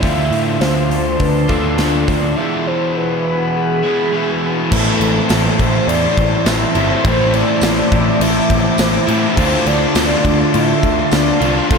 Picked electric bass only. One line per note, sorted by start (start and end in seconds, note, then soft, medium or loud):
0.03 0.29 D2 medium
0.31 0.57 A2 medium
0.60 0.87 D2 medium
0.89 1.15 D2 medium
1.20 1.46 D2 medium
1.50 1.75 D2 medium
1.78 2.04 D2 loud
2.08 2.34 D2 medium
4.72 4.90 A1 loud
5.00 5.19 A1 medium
5.30 5.48 A1 medium
5.59 5.78 A1 medium
5.87 6.06 E2 medium
6.17 6.36 A1 medium
6.45 6.64 A1 loud
6.75 6.93 G1 medium
7.05 7.41 A1 loud
7.62 7.80 A1 loud
7.92 8.10 A1 medium
8.20 8.39 A1 medium
8.50 8.68 A1 medium
8.79 8.97 A1 loud
9.08 9.26 A2 medium
9.38 9.56 D2 loud
9.66 9.85 D2 medium
9.95 10.14 D2 medium
10.25 10.43 D2 medium
10.55 10.73 A2 loud
10.83 11.02 D2 medium
11.12 11.31 D2 loud
11.41 11.59 C2 loud
11.71 11.78 F1 loud